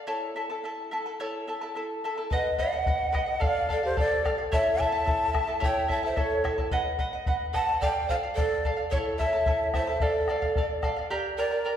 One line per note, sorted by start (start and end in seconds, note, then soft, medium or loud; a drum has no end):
0.07 0.35 E4 medium
0.07 0.35 A4 medium
0.07 0.36 C#5 medium
0.07 0.34 E5 medium
0.07 0.36 A5 medium
0.36 0.50 E4 medium
0.36 0.49 A4 medium
0.36 0.50 E5 medium
0.36 0.48 A5 medium
0.50 0.63 E4 soft
0.50 0.64 A4 soft
0.50 0.64 A5 medium
0.64 0.91 E4 soft
0.64 0.92 A4 medium
0.64 0.90 E5 soft
0.64 0.92 A5 medium
0.91 1.06 E4 medium
0.91 1.06 A4 medium
0.91 1.06 E5 medium
0.91 1.05 A5 medium
1.06 1.19 E4 soft
1.06 1.20 A4 soft
1.06 1.19 A5 soft
1.20 1.47 E4 medium
1.20 1.47 A4 medium
1.20 1.48 C#5 medium
1.20 1.46 E5 medium
1.20 1.48 A5 medium
1.47 1.62 E4 medium
1.47 1.62 A4 medium
1.47 1.61 E5 medium
1.47 1.60 A5 medium
1.61 1.75 E4 soft
1.61 1.75 A4 soft
1.61 1.75 A5 medium
1.75 2.04 E4 medium
1.75 2.04 A4 medium
1.75 2.03 E5 soft
1.75 2.04 A5 medium
2.04 2.17 E4 medium
2.04 2.17 A4 medium
2.04 2.18 E5 medium
2.04 2.16 A5 medium
2.18 2.32 E4 soft
2.18 2.31 A4 soft
2.18 2.31 A5 soft
2.31 2.57 B4 medium
2.31 2.57 D#5 medium
2.31 2.58 D#5 medium
2.31 2.59 F#5 medium
2.31 bombo low medium
2.58 2.72 B4 medium
2.58 3.44 D#5 medium
2.58 2.73 D#5 medium
2.58 3.46 F#5 medium
2.58 2.71 F#5 medium
2.58 bombo low soft
2.72 2.86 D#5 soft
2.72 2.86 F#5 medium
2.86 3.11 B4 medium
2.86 3.12 D#5 soft
2.86 3.13 F#5 medium
2.86 bombo low medium
3.12 3.27 B4 medium
3.12 3.27 D#5 medium
3.12 3.25 F#5 medium
3.12 bombo rim medium
3.12 bombo low medium
3.26 3.40 D#5 soft
3.26 3.41 F#5 soft
3.40 3.67 A4 medium
3.40 3.68 D5 medium
3.40 3.70 D5 medium
3.40 3.69 F5 medium
3.40 bombo low medium
3.44 3.71 F5 loud
3.69 3.83 A4 medium
3.69 3.83 D5 medium
3.69 3.82 F5 medium
3.69 bombo low medium
3.83 3.97 G4 medium
3.83 3.97 C5 medium
3.83 3.96 D5 soft
3.83 3.97 F5 medium
3.96 4.23 A4 medium
3.96 4.36 A4 medium
3.96 4.24 D5 medium
3.96 4.37 D5 medium
3.96 4.25 F5 medium
3.96 bombo low medium
4.25 4.38 A4 medium
4.25 4.38 D5 medium
4.25 4.37 F5 medium
4.25 bombo rim medium
4.25 bombo low medium
4.38 4.51 D5 soft
4.38 4.52 F5 medium
4.52 4.78 E4 medium
4.52 4.79 A4 medium
4.52 4.79 C#5 medium
4.52 4.82 C#5 medium
4.52 4.78 E5 medium
4.52 4.83 E5 loud
4.52 4.79 A5 medium
4.52 bombo low medium
4.79 4.92 E4 medium
4.79 4.92 A4 medium
4.79 4.93 E5 medium
4.79 5.63 E5 loud
4.79 4.91 A5 medium
4.79 5.63 A5 loud
4.79 bombo low medium
4.92 5.05 E4 soft
4.92 5.06 A4 soft
4.92 5.06 A5 medium
5.05 5.33 E4 medium
5.05 5.33 A4 medium
5.05 5.32 E5 soft
5.05 5.33 A5 medium
5.05 bombo low medium
5.33 5.47 E4 medium
5.33 5.47 A4 medium
5.33 5.48 E5 medium
5.33 5.46 A5 medium
5.33 bombo rim medium
5.33 bombo low medium
5.47 5.60 E4 soft
5.47 5.60 A4 soft
5.47 5.60 A5 medium
5.60 5.88 E4 medium
5.60 5.88 A4 medium
5.60 5.89 C#5 medium
5.60 5.88 C#5 medium
5.60 5.87 E5 medium
5.60 5.89 G5 loud
5.60 5.88 A5 medium
5.60 bombo low medium
5.88 6.03 E4 medium
5.88 6.02 A4 medium
5.88 6.03 E5 medium
5.88 6.02 A5 medium
5.88 6.03 A5 medium
5.88 bombo low medium
6.03 6.15 E4 soft
6.03 6.16 A4 soft
6.03 6.20 C5 medium
6.03 6.20 E5 medium
6.03 6.16 A5 soft
6.16 6.43 E4 medium
6.16 6.43 A4 medium
6.16 6.59 A4 medium
6.16 6.59 C#5 medium
6.16 6.43 E5 medium
6.16 6.44 A5 medium
6.16 bombo low medium
6.44 6.58 E4 medium
6.44 6.57 A4 medium
6.44 6.58 E5 medium
6.44 6.57 A5 medium
6.44 bombo rim medium
6.44 bombo low medium
6.58 6.71 E4 soft
6.58 6.72 A4 soft
6.58 6.72 A5 soft
6.58 bombo low medium
6.71 6.97 B4 medium
6.71 6.98 D#5 medium
6.71 6.99 F#5 medium
6.71 bombo low medium
6.99 7.13 B4 medium
6.99 7.13 D#5 medium
6.99 7.12 F#5 medium
6.99 bombo low soft
7.13 7.26 D#5 soft
7.13 7.27 F#5 medium
7.26 7.52 B4 medium
7.26 7.53 D#5 medium
7.26 7.53 F#5 medium
7.26 bombo low medium
7.53 7.68 B4 medium
7.53 7.68 D#5 medium
7.53 7.79 F#5 medium
7.53 7.66 F#5 medium
7.53 7.80 A5 loud
7.53 bombo rim medium
7.53 bombo low medium
7.67 7.81 D#5 soft
7.67 7.82 F#5 medium
7.80 8.08 A4 medium
7.80 8.06 D5 medium
7.80 8.09 D5 medium
7.80 8.10 F5 medium
7.80 8.07 G5 loud
7.80 bombo low medium
8.08 8.23 A4 medium
8.08 8.15 C5 medium
8.08 8.23 D5 medium
8.08 8.16 F5 medium
8.08 8.22 F5 medium
8.08 bombo low soft
8.23 8.36 D5 soft
8.23 8.37 F5 medium
8.35 8.74 A4 medium
8.35 8.64 A4 medium
8.35 8.75 D5 medium
8.35 8.64 D5 medium
8.35 8.65 F5 medium
8.35 bombo low medium
8.65 8.78 A4 medium
8.65 8.77 D5 medium
8.65 8.75 F5 medium
8.65 bombo low medium
8.77 8.91 D5 soft
8.77 8.91 F5 soft
8.90 9.18 E4 medium
8.90 8.96 A4 medium
8.90 9.19 A4 medium
8.90 9.19 C#5 medium
8.90 8.98 C#5 medium
8.90 9.18 E5 medium
8.90 9.20 A5 medium
8.90 bombo low medium
9.18 9.33 E4 medium
9.18 9.32 A4 medium
9.18 9.70 C#5 medium
9.18 9.70 E5 medium
9.18 9.33 E5 medium
9.18 9.32 A5 medium
9.18 bombo low medium
9.33 9.46 E4 soft
9.33 9.46 A4 soft
9.33 9.47 A5 medium
9.46 9.73 E4 medium
9.46 9.74 A4 medium
9.46 9.73 E5 medium
9.46 9.75 A5 medium
9.46 bombo low medium
9.74 9.88 E4 medium
9.74 9.87 A4 medium
9.74 10.03 C5 medium
9.74 9.88 E5 medium
9.74 10.04 E5 medium
9.74 9.86 A5 medium
9.74 bombo rim medium
9.74 bombo low medium
9.87 10.01 E4 soft
9.87 10.00 A4 soft
9.87 10.01 A5 medium
10.00 10.27 A4 medium
10.00 10.84 A4 medium
10.00 10.28 D5 medium
10.00 10.84 D5 medium
10.00 10.29 F5 medium
10.00 bombo low medium
10.28 10.42 A4 medium
10.28 10.42 D5 medium
10.28 10.41 F5 medium
10.28 bombo rim medium
10.42 10.56 D5 soft
10.42 10.56 F5 medium
10.42 bombo low medium
10.56 10.81 A4 medium
10.56 10.83 D5 medium
10.56 10.83 F5 medium
10.56 bombo low medium
10.82 10.97 A4 medium
10.82 10.97 D5 medium
10.82 10.95 F5 medium
10.82 bombo rim medium
10.82 bombo low medium
10.96 11.10 D5 soft
10.96 11.10 F5 medium
11.10 11.38 G4 medium
11.10 11.37 A#4 medium
11.10 11.38 D5 medium
11.10 11.37 G5 medium
11.10 11.38 A#5 medium
11.37 11.77 A#4 medium
11.37 11.51 A#4 medium
11.37 11.77 D5 medium
11.37 11.51 D5 medium
11.37 11.52 G5 medium
11.37 11.49 A#5 medium
11.51 11.64 A#4 soft
11.51 11.64 D5 soft
11.51 11.65 A#5 medium
11.65 11.77 A#4 medium
11.65 11.77 D5 medium
11.65 11.77 G5 medium
11.65 11.77 A#5 medium